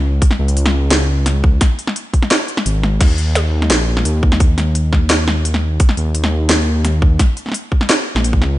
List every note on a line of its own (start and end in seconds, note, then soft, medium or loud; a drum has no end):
0.00 0.21 C#2 medium
0.22 kick loud
0.22 closed hi-hat medium
0.31 snare medium
0.39 1.60 C#2 medium
0.48 closed hi-hat soft
0.57 closed hi-hat medium
0.66 snare medium
0.91 snare loud
0.91 snare medium
0.91 closed hi-hat medium
1.26 snare medium
1.26 closed hi-hat medium
1.44 kick loud
1.61 kick loud
1.61 snare medium
1.61 closed hi-hat medium
1.79 closed hi-hat soft
1.87 snare medium
1.96 closed hi-hat medium
2.14 kick medium
2.14 closed hi-hat soft
2.22 snare medium
2.31 snare loud
2.31 closed hi-hat medium
2.48 closed hi-hat soft
2.57 snare medium
2.66 3.00 G#1 medium
2.66 closed hi-hat medium
2.83 snare medium
3.01 3.69 D#2 loud
3.01 kick loud
3.01 snare medium
3.01 closed hi-hat medium
3.01 crash medium
3.18 closed hi-hat soft
3.35 snare medium
3.35 closed hi-hat medium
3.62 snare medium
3.70 4.04 A#1 medium
3.70 snare loud
3.70 closed hi-hat medium
3.97 snare medium
4.05 4.57 D#2 loud
4.05 closed hi-hat medium
4.23 kick loud
4.32 snare medium
4.40 kick loud
4.40 closed hi-hat medium
4.58 5.79 D#2 medium
4.58 snare medium
4.58 closed hi-hat soft
4.75 closed hi-hat medium
4.93 kick medium
4.93 snare medium
5.10 snare loud
5.10 closed hi-hat medium
5.28 snare medium
5.45 closed hi-hat medium
5.54 snare medium
5.80 kick loud
5.80 closed hi-hat medium
5.89 snare medium
5.97 7.18 D#2 medium
5.97 closed hi-hat soft
6.15 closed hi-hat medium
6.24 snare medium
6.50 snare loud
6.50 snare medium
6.50 closed hi-hat medium
6.85 snare medium
6.85 closed hi-hat medium
7.02 kick loud
7.19 kick loud
7.19 snare medium
7.19 closed hi-hat medium
7.37 closed hi-hat soft
7.46 snare soft
7.49 snare soft
7.52 snare soft
7.52 closed hi-hat medium
7.72 kick medium
7.81 snare medium
7.90 snare loud
7.90 closed hi-hat medium
8.15 8.40 A#1 loud
8.15 snare medium
8.24 closed hi-hat medium
8.33 kick medium
8.41 8.57 C#2 medium
8.41 snare medium